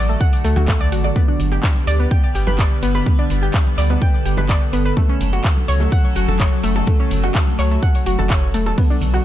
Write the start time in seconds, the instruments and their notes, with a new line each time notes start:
Already playing: analog synth bass A1, ambient pad D3 F#3 A3 F#4 A4
0.09 synth pluck A3 A4, high bongo, shaker
0.21 synth pluck F#5 F#6, kick, shaker
0.33 open hi-hat
0.44 analog synth bass D2, synth pluck A3 A4, open hi-hat, shaker
0.56 analog synth bass D2, synth pluck F#4 F#5, high bongo, high conga, low conga, shaker
0.68 synth pluck A3 A4, kick, clap, shaker
0.81 synth pluck D5 D6
0.92 analog synth bass A1, synth pluck F#4 F#5, open hi-hat, shaker
1.04 synth pluck D5 D6, high bongo, shaker
1.16 ambient pad G3 B3 G4 B4, synth pluck B3 B4, kick, high conga, shaker
1.28 synth pluck D4 D5
1.40 analog synth bass G1, open hi-hat, low conga, shaker
1.52 synth pluck G4 G5, high bongo, shaker
1.63 kick, clap, shaker
1.76 high conga
1.87 analog synth bass D2, synth pluck D5 D6, open hi-hat, shaker
2.00 synth pluck B3 B4, high bongo, shaker
2.11 synth pluck G5 G6, kick, shaker
2.35 analog synth bass G1, synth pluck G4 G5, open hi-hat, shaker
2.47 analog synth bass G1, synth pluck B4 B5, high bongo, high conga, shaker
2.59 synth pluck D5 D6, kick, clap, shaker
2.83 analog synth bass G1, synth pluck B3 B4, open hi-hat, shaker
2.95 synth pluck B4 B5, high bongo, shaker
3.06 synth pluck B3 B4, ambient pad A4, kick, high conga, shaker
3.19 synth pluck D4 D5
3.30 analog synth bass G1, open hi-hat, low conga, shaker
3.42 synth pluck G4 G5, high bongo, shaker
3.54 kick, clap, shaker
3.67 high conga
3.78 analog synth bass D2, synth pluck D5 D6, clap, open hi-hat, shaker
3.90 synth pluck B3 B4, high bongo, shaker
4.02 synth pluck G5 G6, kick, shaker
4.25 analog synth bass G1, synth pluck G4 G5, open hi-hat, shaker
4.37 analog synth bass G1, synth pluck B4 B5, high bongo, high conga, low conga, shaker
4.49 synth pluck D5 D6, kick, clap, shaker
4.73 analog synth bass G1, synth pluck B3 B4, open hi-hat, shaker
4.85 synth pluck B4 B5, high bongo, shaker
4.97 ambient pad C#3 F#3 A3 F#4, synth pluck A3 A4, kick, high conga, shaker
5.09 synth pluck C#4 C#5
5.21 analog synth bass F#1, open hi-hat, low conga, shaker
5.33 synth pluck F#4 F#5, high bongo, shaker
5.44 kick, clap, shaker
5.57 high conga
5.68 analog synth bass C#2, synth pluck C#5 C#6, open hi-hat, shaker
5.80 synth pluck A3 A4, high bongo, shaker
5.92 synth pluck F#5 F#6, kick, shaker
6.16 analog synth bass F#1, synth pluck F#4 F#5, open hi-hat, shaker
6.28 analog synth bass F#1, synth pluck A4 A5, high bongo, high conga, shaker
6.40 synth pluck C#5 C#6, kick, clap, shaker
6.64 analog synth bass F#1, synth pluck A3 A4, open hi-hat, shaker
6.76 synth pluck A4 A5, high bongo, shaker
6.87 synth pluck A3 A4, kick, high conga, shaker
7.00 synth pluck C#4 C#5
7.10 analog synth bass F#1, open hi-hat, low conga, shaker
7.23 synth pluck F#4 F#5, high bongo, shaker
7.35 kick, clap, shaker
7.47 high conga
7.59 analog synth bass C#2, synth pluck C#5 C#6, clap, open hi-hat, shaker
7.71 synth pluck A3 A4, high bongo, shaker
7.83 synth pluck F#5 F#6, kick, shaker
7.95 open hi-hat
8.06 analog synth bass F#1, synth pluck F#4 F#5, open hi-hat, shaker
8.18 analog synth bass F#1, synth pluck A4 A5, high bongo, high conga, low conga, shaker
8.30 synth pluck C#5 C#6, kick, clap, shaker
8.54 analog synth bass E1, synth pluck A3 A4, open hi-hat, shaker
8.66 synth pluck A4 A5, high bongo, shaker
8.78 ambient pad D3 F#3 B3 B4, synth pluck B3 B4, synth texture F#5 F#6, kick, crash, high conga, shaker
8.90 synth pluck D4 D5
9.01 analog synth bass B1, open hi-hat, low conga, shaker
9.14 synth pluck F#4 F#5, high bongo, shaker